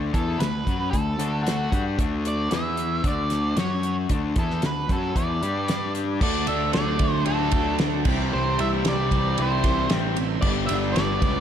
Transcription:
Already playing: D2 D3 A3 D4
0.13 E2 E3 B3 E4 A4, kick, closed hi-hat
0.39 D2 D3 A3 B4, snare, closed hi-hat
0.66 F#2 F#3 C#4 F#4, kick, closed hi-hat
0.90 D2 D3 A3 A4, kick, closed hi-hat
1.19 D2 D3 A3 D4, closed hi-hat
1.43 F#4, closed hi-hat
1.48 snare
1.72 G2 G3 D4 G4, kick, closed hi-hat
1.98 D2 D3 A3 D4, kick, closed hi-hat
2.25 D5, closed hi-hat
2.51 E2 E3 B3 E4 E5, snare, closed hi-hat
2.77 closed hi-hat
3.04 D2 D3 A3 D4 D5, kick, closed hi-hat
3.30 snare, closed hi-hat
3.56 F#2 F#3 C#4 F#4 C#5, snare, closed hi-hat
3.83 closed hi-hat
4.09 D2 D3 A3 D4, kick, closed hi-hat
4.36 E2 E3 B3 E4 A4, kick, closed hi-hat
4.51 snare
4.62 D2 D3 A3 B4, snare, closed hi-hat
4.89 F#2 F#3 C#4 F#4 A4, kick, closed hi-hat
5.16 E2 E3 B3 E4 D5, kick, closed hi-hat
5.42 G2 G3 D4 G4, closed hi-hat
5.68 snare, closed hi-hat
5.95 closed hi-hat
6.21 D2 D3 A3 D4 F#4 D5, kick, crash
6.47 D2 D4 E5, ride
6.73 D2 F#3 D5, snare, ride
6.99 D2 A3, kick, ride
7.26 D2 D4 A4, ride
7.51 D2 F#3, kick, ride
7.78 D2 A3, snare, ride
8.04 C2 C3 E3 G3 C4 E4 G4 E5, kick, crash
8.09 G4
8.32 C2 C3 C5
8.58 C2 E4 E5, ride
8.85 C2 G3 D5, snare, ride
9.11 C2 C4, kick, ride
9.38 C2 E4, ride
9.42 C5
9.64 C2 G3, kick, snare, ride
9.89 A1 C3 E3 G3 C4 G4, snare, ride
10.17 C3, ride
10.42 G1 G2 D3 G3 B3 D4 G4 D5, kick, crash
10.66 G1 D4 E5, ride
10.93 G1 D5, ride
10.97 G3, snare
11.22 C#2 B3, kick, ride

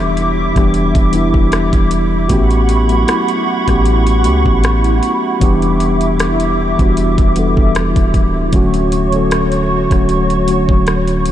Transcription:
Already playing: E1 E3 G3 B3 D4 E4 G4 E5 D6
0.17 closed hi-hat
0.54 E1 E3 G3 B3 D4, kick, cross-stick, closed hi-hat
0.59 G4
0.74 closed hi-hat
0.95 E1, kick, closed hi-hat
1.11 E3 G3 B3 D4, closed hi-hat
1.15 E4
1.34 E1, kick
1.52 cross-stick, closed hi-hat
1.73 E1, kick, closed hi-hat
1.91 closed hi-hat
2.28 A1 A3 B3 C#4 F#4 F#5 B5 C#6, kick, closed hi-hat
2.33 G4
2.51 closed hi-hat
2.69 closed hi-hat
2.89 F#3 A3 B3 C#4, closed hi-hat
2.93 F#4
3.08 cross-stick, closed hi-hat
3.28 closed hi-hat
3.67 A1 A3 B3 C#4 F#4, kick, cross-stick, closed hi-hat
3.71 G4
3.86 closed hi-hat
4.07 closed hi-hat
4.23 C#2 A3 B3 C#4 F#4, closed hi-hat
4.27 G4
4.46 A1, kick
4.64 cross-stick, closed hi-hat
4.84 closed hi-hat
5.03 closed hi-hat
5.40 E1 E3 G3 B3 D4 G4 E5 D6, kick, closed hi-hat
5.62 closed hi-hat
5.80 closed hi-hat
6.01 closed hi-hat
6.20 cross-stick, closed hi-hat
6.40 closed hi-hat
6.78 E1 E3 G3 B3 D4, kick, closed hi-hat
6.82 F#4
6.97 closed hi-hat
7.18 E1, kick, closed hi-hat
7.35 E3 G3 B3 D4 A4, closed hi-hat
7.57 E1, kick
7.75 cross-stick, closed hi-hat
7.96 D1, kick, closed hi-hat
8.14 kick, closed hi-hat
8.52 D1 D3 F#3 A3 C#4 F#4 C#5 C#6, kick, closed hi-hat
8.56 F#4
8.74 closed hi-hat
8.92 closed hi-hat
9.12 D3 F#3 A3 C#4 A4, closed hi-hat
9.31 cross-stick, closed hi-hat
9.52 closed hi-hat
9.90 D1 D3 F#3 A3 C#4 F#4, kick, cross-stick, closed hi-hat
10.09 closed hi-hat
10.30 closed hi-hat
10.47 D3 F#3 A3 C#4 F#4, closed hi-hat
10.69 D1, kick
10.87 cross-stick, closed hi-hat
11.07 closed hi-hat
11.26 closed hi-hat

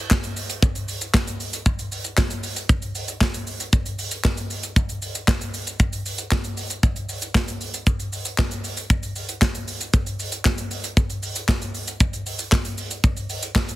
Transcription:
0.11 kick, snare, clap, shaker
0.24 closed hi-hat, shaker
0.37 open hi-hat, shaker
0.50 closed hi-hat, shaker
0.63 kick, shaker
0.75 closed hi-hat, shaker
0.88 open hi-hat, shaker
1.01 closed hi-hat, shaker
1.14 kick, snare, clap, shaker
1.27 closed hi-hat, shaker
1.40 open hi-hat, shaker
1.53 closed hi-hat, shaker
1.66 kick, shaker
1.79 closed hi-hat, shaker
1.92 open hi-hat, shaker
2.04 closed hi-hat, shaker
2.17 kick, snare, clap, shaker
2.30 closed hi-hat, shaker
2.43 open hi-hat, shaker
2.56 closed hi-hat, shaker
2.69 kick, shaker
2.82 closed hi-hat, shaker
2.95 open hi-hat, shaker
3.08 closed hi-hat, shaker
3.21 kick, snare, clap, shaker
3.34 closed hi-hat, shaker
3.47 open hi-hat, shaker
3.60 closed hi-hat, shaker
3.73 kick, shaker
3.86 closed hi-hat, shaker
3.99 open hi-hat, shaker
4.11 closed hi-hat, shaker
4.24 kick, snare, clap, shaker
4.37 closed hi-hat, shaker
4.50 open hi-hat, shaker
4.63 closed hi-hat, shaker
4.76 kick, shaker
4.89 closed hi-hat, shaker
5.02 open hi-hat, shaker
5.15 closed hi-hat, shaker
5.28 kick, snare, clap, shaker
5.41 closed hi-hat, shaker
5.54 open hi-hat, shaker
5.67 closed hi-hat, shaker
5.80 kick, shaker
5.93 closed hi-hat, shaker
6.06 open hi-hat, shaker
6.18 closed hi-hat, shaker
6.31 kick, snare, clap, shaker
6.44 closed hi-hat, shaker
6.57 open hi-hat, shaker
6.70 closed hi-hat, shaker
6.83 kick, shaker
6.96 closed hi-hat, shaker
7.09 open hi-hat, shaker
7.22 closed hi-hat, shaker
7.35 kick, snare, clap, shaker
7.48 closed hi-hat, shaker
7.61 open hi-hat, shaker
7.74 closed hi-hat, shaker
7.87 kick, shaker
8.00 closed hi-hat, shaker
8.13 open hi-hat, shaker
8.25 closed hi-hat, shaker
8.38 kick, snare, clap, shaker
8.51 closed hi-hat, shaker
8.64 open hi-hat, shaker
8.77 closed hi-hat, shaker
8.90 kick, shaker
9.03 closed hi-hat, shaker
9.16 open hi-hat, shaker
9.29 closed hi-hat, shaker
9.42 kick, snare, clap, shaker
9.55 closed hi-hat, shaker
9.68 open hi-hat, shaker
9.81 closed hi-hat, shaker
9.93 kick, shaker
10.06 closed hi-hat, shaker
10.19 open hi-hat, shaker
10.32 closed hi-hat, shaker
10.45 kick, snare, clap, shaker
10.58 closed hi-hat, shaker
10.71 open hi-hat, shaker
10.84 closed hi-hat, shaker
10.97 kick, shaker
11.10 closed hi-hat, shaker
11.23 open hi-hat, shaker
11.36 closed hi-hat, shaker
11.48 kick, snare, clap, shaker
11.62 closed hi-hat, shaker
11.74 open hi-hat, shaker
11.88 closed hi-hat, shaker
12.00 kick, shaker
12.13 closed hi-hat, shaker
12.26 open hi-hat, shaker
12.39 closed hi-hat, shaker
12.52 kick, snare, clap, shaker
12.65 closed hi-hat, shaker
12.78 open hi-hat, shaker
12.91 closed hi-hat, shaker
13.04 kick, shaker
13.17 closed hi-hat, shaker
13.30 open hi-hat, shaker
13.43 closed hi-hat, shaker
13.55 kick, snare, clap, shaker
13.69 closed hi-hat, shaker

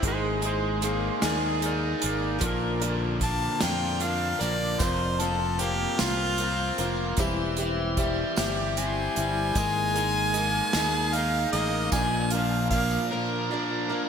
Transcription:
0.02 G#1 G#3 A#3 D#4 G#4, kick, closed hi-hat
0.08 G#4 C5
0.41 G#3 A#3 D#4 G#4, closed hi-hat
0.46 C5
0.81 G#3 A#3 D#4 G#4 C5, closed hi-hat
1.21 D#2 G#3 A#3 D#4 G#4 A#4, snare, closed hi-hat
1.26 D5
1.60 G#3 A#3 D#4 G#4, closed hi-hat
1.66 A#4 D5
1.99 A#3 D#4 G#4, closed hi-hat
2.04 G#1 A#4 D5
2.39 A#1 A#2 D3 F3 A#3 D4 A#4, kick, closed hi-hat
2.43 A#2 A#4
2.80 D3 F3 A#3 D4 A#4, closed hi-hat
3.20 F3 A#3 D4 A#4 A5, kick, closed hi-hat
3.60 F2 A#2 D3 F3 A#3 D4 F4 A#4 G5, snare, closed hi-hat
3.99 F3 A#3 D4 A#4 F5, closed hi-hat
4.39 A#1 F3 A#3 D4 A#4 D5, closed hi-hat
4.78 F1 F2 F3 A#3 C4 F4 A#4 C5 F5, kick, closed hi-hat, tambourine
5.19 F3 A#3 C4 F4 A4 C5 F5, closed hi-hat
5.57 F3 A#3 C4 F4 G4 A#4 C5, closed hi-hat
5.62 F5
5.98 C2 F3 C4 F4 A#4, snare, closed hi-hat, tambourine
6.38 F3 C4 F4 A#4 C5 F5, closed hi-hat, tambourine
6.42 A#4
6.78 F1 A#3 C4 F4 A#4 C5 F5, closed hi-hat
7.17 E1 E3 G3 C4 E4 G4 C5 E5, kick, closed hi-hat, tambourine
7.57 E3 E4 G4 C5 E5, closed hi-hat
7.62 C4
7.97 G3 C4 E4 G4 C5 E5, kick, closed hi-hat
8.36 G1 E3 G3 C4 E4 G4, snare, closed hi-hat, tambourine
8.76 G3 C4 E4 C5 E5 G#5, closed hi-hat, tambourine
9.14 G1 G3 E4 C5 E5, closed hi-hat
9.19 C4
9.53 G#1 G#3 A#3 D#4 G#4 A#4 D#5, kick, closed hi-hat, tambourine
9.57 D#4 A#4
9.94 G#3 A#3 D#4 G#4 A#4 D#5, closed hi-hat
10.33 G#3 A#3 D#4 G#4 A#4 D#5, closed hi-hat
10.37 A#4
10.73 D#2 A#3 D#4 G#4 A#4, snare, closed hi-hat, tambourine
10.77 G#3
11.12 G#3 G#4 A#4 D#5 F5, closed hi-hat, tambourine
11.16 A#3 D#4 A#4
11.52 A1 D#4 G#4 A#4 D#5, closed hi-hat
11.58 A#3
11.91 A#1 A#2 A#3 D4 F4 A#4 D5 G#5, kick, closed hi-hat, tambourine
11.96 D3 F3 A#3 D4 A#4
12.30 F4 A#4 D5 F5, closed hi-hat
12.35 F3 A#3 D4
12.70 F3 A#3 F4 A#4 D5 F5, kick, closed hi-hat, tambourine
12.75 D4 A#4
12.91 tambourine
13.11 A#2 D3 F3 A#3 D4 A#4
13.50 F3 A#3 D4 F4 A#4 D5
13.54 A#4
13.88 D4 F4 A#4 D5
13.92 F3 A#3

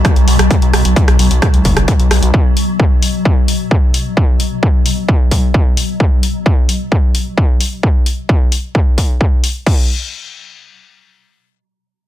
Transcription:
Already playing: B2 F#3
0.05 kick, cross-stick, closed hi-hat
0.16 B1, closed hi-hat
0.28 B1, open hi-hat
0.39 B1, cross-stick, closed hi-hat
0.51 kick, closed hi-hat
0.62 B1, closed hi-hat
0.73 B1, cross-stick, open hi-hat
0.85 B1, closed hi-hat
0.96 kick, closed hi-hat
1.08 B1, cross-stick, closed hi-hat
1.19 B1, open hi-hat
1.31 B1, closed hi-hat
1.42 kick, cross-stick, closed hi-hat
1.54 C#2, closed hi-hat
1.65 F#1, kick, open hi-hat
1.77 F#1, cross-stick, closed hi-hat
1.88 kick, closed hi-hat
2.00 B1, closed hi-hat
2.11 B1, cross-stick, open hi-hat
2.22 B1, closed hi-hat
2.34 kick
2.57 open hi-hat
2.80 kick
3.02 open hi-hat
3.25 kick
3.48 open hi-hat
3.71 kick
3.94 open hi-hat
4.17 kick
4.40 open hi-hat
4.63 kick
4.86 open hi-hat
5.09 kick
5.31 kick, open hi-hat
5.54 kick
5.77 open hi-hat
6.00 kick
6.23 open hi-hat
6.46 kick
6.69 open hi-hat
6.92 kick
7.15 open hi-hat
7.38 kick
7.61 open hi-hat
7.83 kick
8.06 open hi-hat
8.29 kick
8.52 open hi-hat
8.75 kick
8.98 kick, open hi-hat
9.21 kick
9.44 open hi-hat
9.66 kick, crash

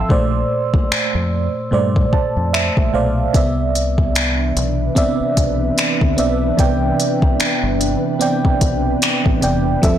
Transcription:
Already playing: F3 C4 A4 E5 F5 G5 A5 C6 E6
0.09 A#1 A#2 A3 C5 D5, kick
0.74 A#1, kick
0.91 finger snap, muted fingered electric bass stroke
1.15 F2
1.71 G2 A#2 A3 C5 D5
1.96 kick
2.13 A5, muted fingered electric bass stroke, kick
2.37 F2
2.53 E5, finger snap
2.77 A#1, kick
2.93 B1 A#2 A3 C5 D5 F5
3.33 C2 C3 E3 B3 D4 B4 D5 E5, kick, closed hi-hat
3.75 closed hi-hat
3.98 kick
4.15 finger snap, closed hi-hat
4.56 B1, closed hi-hat
4.95 B3 C4 D5 E5, kick, closed hi-hat
5.20 muted fingered electric bass stroke
5.37 B1, kick, closed hi-hat
5.78 finger snap, closed hi-hat
6.01 D2, kick
6.17 B1 B3 C4 D5 E5, closed hi-hat
6.57 C2 C3 B3 D5 G5, kick, closed hi-hat
7.00 closed hi-hat
7.22 C2, kick
7.40 finger snap, closed hi-hat
7.63 G1
7.81 closed hi-hat
8.19 B3 C4 D5 G5, closed hi-hat
8.45 muted fingered electric bass stroke, kick
8.61 B1, kick, closed hi-hat
9.02 finger snap, closed hi-hat
9.26 A1, kick
9.41 E1 C3 B3 D5 G5, closed hi-hat
9.82 F1 F3 C4 E4 A4 E5, kick, closed hi-hat

